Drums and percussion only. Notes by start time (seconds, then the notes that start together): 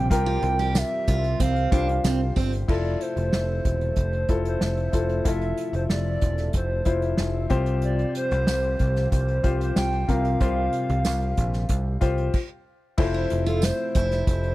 0.11 kick, closed hi-hat
0.28 closed hi-hat
0.43 closed hi-hat
0.59 closed hi-hat
0.75 snare, closed hi-hat, tambourine
1.08 kick, closed hi-hat
1.24 closed hi-hat
1.40 kick, closed hi-hat
1.56 closed hi-hat
1.72 kick, closed hi-hat
1.89 closed hi-hat
2.04 snare, closed hi-hat, tambourine
2.37 kick, open hi-hat
2.53 closed hi-hat
2.69 kick, crash
2.85 closed hi-hat
3.01 closed hi-hat
3.17 closed hi-hat
3.33 snare
3.65 kick, closed hi-hat
3.81 closed hi-hat
3.96 kick, closed hi-hat
4.13 closed hi-hat
4.29 kick, closed hi-hat
4.45 closed hi-hat
4.61 snare
4.77 closed hi-hat
4.93 kick, closed hi-hat
5.09 closed hi-hat
5.25 kick, closed hi-hat
5.41 closed hi-hat
5.57 closed hi-hat
5.74 closed hi-hat
5.90 snare
6.21 kick, closed hi-hat
6.38 snare, closed hi-hat
6.53 kick, closed hi-hat
6.85 kick, closed hi-hat
7.02 closed hi-hat
7.17 snare
7.50 kick, closed hi-hat
7.66 closed hi-hat
7.82 closed hi-hat
7.99 closed hi-hat
8.15 closed hi-hat
8.31 closed hi-hat
8.47 snare, tambourine
8.63 closed hi-hat
8.79 kick, closed hi-hat
8.96 snare, closed hi-hat
9.12 kick, closed hi-hat
9.28 closed hi-hat
9.44 kick, closed hi-hat
9.61 closed hi-hat
9.76 snare, tambourine
9.92 closed hi-hat
10.09 kick, closed hi-hat
10.25 closed hi-hat
10.41 kick, closed hi-hat
10.73 closed hi-hat
10.89 closed hi-hat
11.05 snare, tambourine
11.21 closed hi-hat
11.37 kick, closed hi-hat
11.53 snare, closed hi-hat
11.69 kick, closed hi-hat
12.01 kick, closed hi-hat
12.18 closed hi-hat
12.34 kick, crash
12.98 kick, crash
13.30 closed hi-hat
13.47 closed hi-hat
13.62 snare, closed hi-hat, tambourine
13.95 kick, closed hi-hat
14.11 snare, closed hi-hat
14.27 kick, closed hi-hat
14.43 closed hi-hat